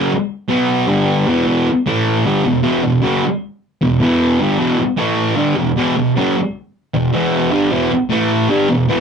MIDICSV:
0, 0, Header, 1, 3, 480
1, 0, Start_track
1, 0, Key_signature, 1, "minor"
1, 0, Tempo, 389864
1, 1814, Time_signature, 4, 2, 24, 8
1, 11083, End_track
2, 0, Start_track
2, 0, Title_t, "Distorted electric guitar"
2, 0, Program_c, 0, 30
2, 0, Note_on_c, 0, 49, 107
2, 0, Note_on_c, 0, 54, 104
2, 125, Note_off_c, 0, 49, 0
2, 134, Note_off_c, 0, 54, 0
2, 600, Note_on_c, 0, 47, 85
2, 611, Note_on_c, 0, 54, 86
2, 619, Note_on_c, 0, 59, 87
2, 1069, Note_on_c, 0, 43, 105
2, 1078, Note_off_c, 0, 47, 0
2, 1081, Note_off_c, 0, 54, 0
2, 1083, Note_on_c, 0, 50, 109
2, 1086, Note_on_c, 0, 55, 117
2, 1089, Note_off_c, 0, 59, 0
2, 1554, Note_off_c, 0, 43, 0
2, 1561, Note_off_c, 0, 50, 0
2, 1562, Note_off_c, 0, 55, 0
2, 1571, Note_on_c, 0, 40, 86
2, 1576, Note_on_c, 0, 47, 95
2, 1588, Note_on_c, 0, 52, 95
2, 1785, Note_off_c, 0, 40, 0
2, 1800, Note_on_c, 0, 40, 100
2, 1805, Note_off_c, 0, 47, 0
2, 1807, Note_off_c, 0, 52, 0
2, 1819, Note_on_c, 0, 47, 108
2, 1822, Note_on_c, 0, 52, 107
2, 2039, Note_off_c, 0, 40, 0
2, 2049, Note_off_c, 0, 47, 0
2, 2050, Note_off_c, 0, 52, 0
2, 2295, Note_on_c, 0, 45, 99
2, 2304, Note_on_c, 0, 52, 83
2, 2320, Note_on_c, 0, 57, 93
2, 2764, Note_on_c, 0, 43, 92
2, 2767, Note_off_c, 0, 45, 0
2, 2771, Note_off_c, 0, 52, 0
2, 2778, Note_on_c, 0, 50, 105
2, 2779, Note_off_c, 0, 57, 0
2, 2788, Note_on_c, 0, 55, 97
2, 3001, Note_off_c, 0, 43, 0
2, 3008, Note_off_c, 0, 50, 0
2, 3013, Note_off_c, 0, 55, 0
2, 3016, Note_on_c, 0, 40, 70
2, 3025, Note_on_c, 0, 47, 79
2, 3206, Note_off_c, 0, 40, 0
2, 3211, Note_off_c, 0, 47, 0
2, 3238, Note_on_c, 0, 40, 92
2, 3250, Note_on_c, 0, 47, 95
2, 3256, Note_on_c, 0, 52, 98
2, 3475, Note_off_c, 0, 40, 0
2, 3480, Note_off_c, 0, 47, 0
2, 3487, Note_off_c, 0, 52, 0
2, 3490, Note_on_c, 0, 40, 66
2, 3495, Note_on_c, 0, 47, 74
2, 3683, Note_off_c, 0, 40, 0
2, 3685, Note_off_c, 0, 47, 0
2, 3718, Note_on_c, 0, 42, 104
2, 3737, Note_on_c, 0, 49, 104
2, 3748, Note_on_c, 0, 54, 106
2, 3958, Note_off_c, 0, 42, 0
2, 3967, Note_off_c, 0, 49, 0
2, 3973, Note_off_c, 0, 54, 0
2, 4695, Note_on_c, 0, 40, 66
2, 4704, Note_on_c, 0, 47, 70
2, 4885, Note_off_c, 0, 40, 0
2, 4889, Note_off_c, 0, 47, 0
2, 4927, Note_on_c, 0, 40, 100
2, 4946, Note_on_c, 0, 47, 99
2, 4953, Note_on_c, 0, 52, 113
2, 5401, Note_off_c, 0, 40, 0
2, 5411, Note_off_c, 0, 47, 0
2, 5414, Note_off_c, 0, 52, 0
2, 5420, Note_on_c, 0, 43, 90
2, 5429, Note_on_c, 0, 50, 97
2, 5439, Note_on_c, 0, 55, 92
2, 5638, Note_off_c, 0, 43, 0
2, 5643, Note_on_c, 0, 40, 100
2, 5647, Note_off_c, 0, 50, 0
2, 5652, Note_on_c, 0, 47, 109
2, 5657, Note_off_c, 0, 55, 0
2, 5663, Note_on_c, 0, 52, 108
2, 5879, Note_off_c, 0, 40, 0
2, 5883, Note_off_c, 0, 47, 0
2, 5889, Note_off_c, 0, 52, 0
2, 6124, Note_on_c, 0, 45, 104
2, 6138, Note_on_c, 0, 52, 108
2, 6149, Note_on_c, 0, 57, 114
2, 6598, Note_on_c, 0, 43, 95
2, 6599, Note_off_c, 0, 45, 0
2, 6604, Note_off_c, 0, 52, 0
2, 6605, Note_on_c, 0, 50, 94
2, 6609, Note_on_c, 0, 55, 107
2, 6612, Note_off_c, 0, 57, 0
2, 6836, Note_off_c, 0, 43, 0
2, 6840, Note_off_c, 0, 50, 0
2, 6842, Note_off_c, 0, 55, 0
2, 6850, Note_on_c, 0, 47, 76
2, 6851, Note_on_c, 0, 40, 68
2, 7041, Note_off_c, 0, 47, 0
2, 7042, Note_off_c, 0, 40, 0
2, 7099, Note_on_c, 0, 40, 92
2, 7110, Note_on_c, 0, 47, 104
2, 7120, Note_on_c, 0, 52, 103
2, 7326, Note_off_c, 0, 40, 0
2, 7332, Note_off_c, 0, 47, 0
2, 7337, Note_off_c, 0, 52, 0
2, 7344, Note_on_c, 0, 40, 66
2, 7355, Note_on_c, 0, 47, 70
2, 7528, Note_off_c, 0, 40, 0
2, 7534, Note_off_c, 0, 47, 0
2, 7595, Note_on_c, 0, 42, 104
2, 7600, Note_on_c, 0, 49, 99
2, 7611, Note_on_c, 0, 54, 111
2, 7815, Note_off_c, 0, 42, 0
2, 7817, Note_off_c, 0, 49, 0
2, 7823, Note_off_c, 0, 54, 0
2, 8545, Note_on_c, 0, 40, 67
2, 8547, Note_on_c, 0, 47, 76
2, 8729, Note_off_c, 0, 40, 0
2, 8730, Note_off_c, 0, 47, 0
2, 8777, Note_on_c, 0, 40, 102
2, 8789, Note_on_c, 0, 47, 95
2, 8809, Note_on_c, 0, 52, 104
2, 9247, Note_off_c, 0, 40, 0
2, 9252, Note_off_c, 0, 47, 0
2, 9252, Note_on_c, 0, 43, 91
2, 9262, Note_off_c, 0, 52, 0
2, 9264, Note_on_c, 0, 50, 103
2, 9278, Note_on_c, 0, 55, 104
2, 9484, Note_off_c, 0, 43, 0
2, 9490, Note_off_c, 0, 50, 0
2, 9492, Note_on_c, 0, 40, 87
2, 9497, Note_off_c, 0, 55, 0
2, 9500, Note_on_c, 0, 47, 94
2, 9509, Note_on_c, 0, 52, 105
2, 9711, Note_off_c, 0, 40, 0
2, 9728, Note_off_c, 0, 47, 0
2, 9733, Note_off_c, 0, 52, 0
2, 9966, Note_on_c, 0, 45, 84
2, 9977, Note_on_c, 0, 52, 96
2, 9987, Note_on_c, 0, 57, 109
2, 10442, Note_off_c, 0, 45, 0
2, 10448, Note_off_c, 0, 52, 0
2, 10450, Note_on_c, 0, 43, 94
2, 10453, Note_off_c, 0, 57, 0
2, 10464, Note_on_c, 0, 50, 96
2, 10465, Note_on_c, 0, 55, 112
2, 10684, Note_off_c, 0, 43, 0
2, 10691, Note_off_c, 0, 50, 0
2, 10692, Note_off_c, 0, 55, 0
2, 10702, Note_on_c, 0, 40, 72
2, 10703, Note_on_c, 0, 47, 74
2, 10889, Note_off_c, 0, 40, 0
2, 10890, Note_off_c, 0, 47, 0
2, 10935, Note_on_c, 0, 40, 91
2, 10952, Note_on_c, 0, 47, 107
2, 10952, Note_on_c, 0, 52, 107
2, 11083, Note_off_c, 0, 40, 0
2, 11083, Note_off_c, 0, 47, 0
2, 11083, Note_off_c, 0, 52, 0
2, 11083, End_track
3, 0, Start_track
3, 0, Title_t, "Muted distorted electric guitar strokes"
3, 2053, Note_on_c, 9, 29, 62
3, 2176, Note_off_c, 9, 29, 0
3, 5896, Note_on_c, 9, 29, 60
3, 6020, Note_off_c, 9, 29, 0
3, 9726, Note_on_c, 9, 29, 63
3, 9849, Note_off_c, 9, 29, 0
3, 11083, End_track
0, 0, End_of_file